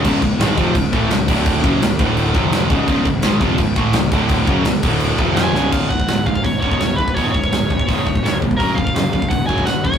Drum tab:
CC |x-x-x-x-x-x-x-x-|x-x-x-x-x-x-x-x-|x-x-x-x-x-x-x-x-|x-x-x-x-x-x-x---|
HH |----------------|----------------|----------------|----------------|
SD |----o-------o---|----o-------o---|----o-------o---|----o-------o-o-|
BD |o-o---o-o-o---o-|o-o---o---o---o-|o-o---o-o-o---o-|o-o---o---o-----|

CC |x---------------|----------------|----------------|
HH |----o---o---o---|o---o---o---o---|o---o---o---o---|
SD |----o-------o---|----o-------o---|----o-------o---|
BD |o-oo--ooo-oo--oo|o-oo--ooo-oo--oo|o-oo--ooo-oo--oo|